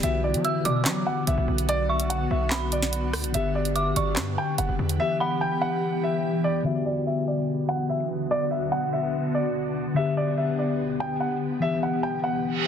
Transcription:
0.00 0.36 B1 loud
0.00 3.29 D3 medium
0.00 4.96 D3 medium
0.00 4.96 B3 medium
0.00 3.30 B3 medium
0.00 3.31 F#4 medium
0.00 0.19 E5 loud
0.00 closed hi-hat medium
0.05 3.31 F#4 medium
0.24 0.39 D5 medium
0.34 0.44 F#3 loud
0.34 closed hi-hat medium
0.44 0.60 E5 medium
0.44 0.64 E6 medium
0.44 closed hi-hat medium
0.65 0.87 B2 loud
0.65 1.04 D5 medium
0.65 1.24 D6 medium
0.65 closed hi-hat medium
0.85 1.06 F#3 loud
0.85 snare loud
0.85 clap medium
0.85 closed hi-hat medium
1.07 1.22 F#5 medium
1.27 1.37 B1 loud
1.27 1.43 E5 medium
1.27 closed hi-hat medium
1.38 1.48 B1 loud
1.48 2.27 B1 loud
1.58 closed hi-hat medium
1.69 1.84 D5 loud
1.69 closed hi-hat medium
1.89 2.05 E5 medium
1.89 2.48 C#6 medium
2.00 closed hi-hat medium
2.10 2.25 F#5 medium
2.10 closed hi-hat medium
2.31 3.15 B1 loud
2.31 2.70 E5 medium
2.51 3.30 B5 medium
2.51 snare loud
2.51 clap medium
2.72 3.31 D5 medium
2.72 closed hi-hat medium
2.83 snare medium
2.93 closed hi-hat medium
3.13 3.25 D2 loud
3.13 cross-stick loud
3.13 open hi-hat medium
3.24 3.34 B1 loud
3.24 closed hi-hat medium
3.32 3.94 G1 loud
3.32 4.95 D3 medium
3.32 4.96 B3 medium
3.32 6.62 G4 medium
3.32 3.50 E5 loud
3.32 closed hi-hat medium
3.36 4.98 G4 medium
3.55 3.71 D5 medium
3.65 closed hi-hat medium
3.75 3.91 E5 medium
3.75 3.95 D6 medium
3.75 closed hi-hat medium
3.96 4.18 G1 loud
3.96 4.35 D5 medium
3.96 4.55 C#6 medium
3.96 closed hi-hat medium
4.16 4.37 G2 loud
4.16 snare loud
4.16 clap medium
4.16 closed hi-hat medium
4.38 4.54 G5 loud
4.58 4.68 F#1 loud
4.58 4.74 F#5 medium
4.58 closed hi-hat medium
4.69 4.79 F#1 loud
4.79 4.99 E2 loud
4.89 closed hi-hat medium
4.98 6.61 E3 medium
4.98 6.64 E3 medium
4.98 6.64 B3 medium
4.98 6.62 B3 medium
4.98 5.15 E5 loud
5.02 6.63 G4 medium
5.20 5.36 F#5 medium
5.20 6.61 B5 medium
5.41 5.57 G5 medium
5.62 6.01 F#5 medium
6.03 6.42 E5 medium
6.44 6.60 D5 medium
6.63 9.91 D3 medium
6.63 11.58 D3 medium
6.63 9.92 B3 medium
6.63 12.67 B3 medium
6.63 9.93 F#4 medium
6.63 6.81 E5 loud
6.67 9.93 F#4 medium
6.86 7.01 D5 medium
7.07 7.22 E5 medium
7.27 7.66 D5 medium
7.69 7.84 F#5 medium
7.89 8.05 E5 medium
8.31 8.46 D5 loud
8.51 8.67 E5 medium
8.72 8.88 F#5 medium
8.93 9.32 E5 medium
9.34 9.93 D5 medium
9.94 11.57 D3 medium
9.94 11.58 B3 medium
9.94 11.60 G4 medium
9.94 10.12 E5 loud
9.98 11.60 G4 medium
10.17 10.33 D5 medium
10.38 10.53 E5 medium
10.59 10.97 D5 medium
11.00 11.16 G5 medium
11.20 11.36 F#5 medium
11.60 12.67 E3 medium
11.60 12.67 B3 medium
11.60 12.67 G4 medium
11.60 11.77 E5 loud
11.64 12.67 G4 medium
11.83 11.98 F#5 medium
12.03 12.19 G5 medium
12.24 12.63 F#5 medium
12.45 reverse cymbal medium

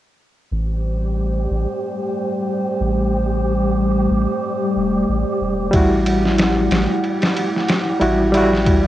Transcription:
0.50 1.47 A1 medium
0.50 8.87 G3 medium
0.50 8.87 A3 medium
0.50 8.87 G4 medium
0.50 5.69 C5 medium
1.50 1.66 A1 loud
2.80 4.08 A1 medium
4.11 4.27 A1 medium
4.76 5.05 E1 medium
5.09 5.25 A1 medium
5.41 5.70 E1 medium
5.71 6.69 A1 medium
5.71 7.97 G3 medium
5.71 7.98 E4 medium
5.71 8.87 E4 medium
5.71 8.87 F#5 medium
5.71 kick medium
5.71 ride medium
5.76 8.00 F#4 medium
6.06 ride medium
6.26 snare soft
6.39 snare loud
6.39 ride medium
6.71 6.87 A1 medium
6.71 snare medium
6.71 ride medium
7.04 ride medium
7.22 snare medium
7.22 ride medium
7.37 ride medium
7.57 snare soft
7.68 snare medium
7.68 ride medium
8.00 8.87 A1 medium
8.00 8.30 G3 medium
8.00 8.31 E4 medium
8.00 8.31 F#4 medium
8.00 ride medium
8.32 8.87 G3 medium
8.32 8.87 E4 medium
8.32 ride medium
8.37 8.87 F#4 medium
8.53 snare soft
8.66 kick medium
8.66 ride medium

